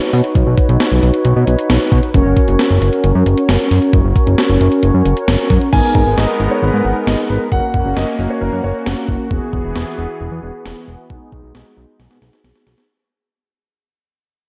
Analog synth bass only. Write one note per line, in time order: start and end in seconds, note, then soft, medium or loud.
0.13 0.22 B2 loud
0.35 0.44 B1 loud
0.47 0.55 B1 loud
0.69 0.78 B1 loud
0.92 1.00 B1 medium
1.03 1.11 B1 loud
1.25 1.34 B1 loud
1.36 1.45 B2 medium
1.47 1.56 B1 medium
1.70 1.78 B1 loud
1.92 2.01 B2 loud
2.14 2.23 F#1 loud
2.26 2.34 F#1 loud
2.48 2.57 F#1 loud
2.70 2.79 F#1 loud
2.82 2.90 F#1 loud
3.04 3.13 F#1 loud
3.15 3.24 F#2 loud
3.26 3.35 F#1 loud
3.49 3.57 F#1 loud
3.71 3.80 F#2 loud
3.93 4.02 F#1 loud
4.05 4.13 F#1 loud
4.27 4.36 F#1 medium
4.50 4.58 F#1 loud
4.60 4.69 F#1 loud
4.83 4.92 F#1 loud
4.94 5.03 F#2 medium
5.05 5.14 F#1 medium
5.28 5.36 F#1 loud
5.50 5.59 F#2 loud
5.73 5.81 G#1 loud
5.95 6.04 G#1 loud
6.07 6.15 G#1 loud
6.18 6.26 G#1 medium
6.40 6.48 G#1 medium
6.62 6.71 G#1 loud
6.74 6.82 G#2 medium
6.85 6.93 G#1 loud
7.07 7.16 G#1 loud
7.30 7.38 G#1 medium
7.52 7.60 F#1 loud
7.74 7.83 F#1 medium
7.86 7.94 F#1 loud
7.97 8.05 F#1 loud
8.19 8.28 F#1 loud
8.41 8.50 F#1 loud
8.53 8.61 F#2 loud
8.64 8.73 F#1 medium
8.86 8.95 F#1 loud
9.08 9.17 F#1 loud
9.31 9.39 E1 loud
9.53 9.62 E1 loud
9.65 9.73 E1 medium
9.76 9.84 E1 loud
9.98 10.07 E1 medium
10.21 10.29 E1 loud
10.32 10.40 E2 medium
10.43 10.52 E1 loud
10.65 10.74 E1 loud
10.88 10.96 E1 loud
11.10 11.19 B1 loud
11.32 11.41 B1 loud
11.44 11.52 B1 loud
11.55 11.63 B1 loud
11.77 11.86 B1 loud
11.99 12.08 B1 medium
12.11 12.19 B2 medium
12.22 12.30 B1 medium
12.44 12.53 B1 loud
12.67 12.75 B1 loud